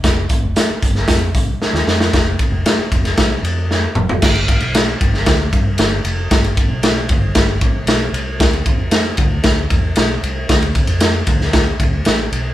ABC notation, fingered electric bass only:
X:1
M:4/4
L:1/16
Q:1/4=115
K:Fmix
V:1 name="Fingered electric bass" clef=bass
F,,,2 z F,,, z2 G,,,2 F,,2 C,,2 z E,, F,,2 | F,,,2 z F,,, z2 F,,,2 C,,2 F,,4 F,,,2 | [K:Gmix] G,,,3 B,,,3 G,,,2 D,,2 G,,2 G,,,2 F,,,2 | G,,,3 B,,,3 G,,,2 G,,,2 A,,,2 B,,,2 C,,2 |
D,,3 F,,3 D,,2 D,,2 E,,2 B,,,2 C,,2 | D,,3 F,,3 D,,4 D,,2 A,,,2 B,,,2 |]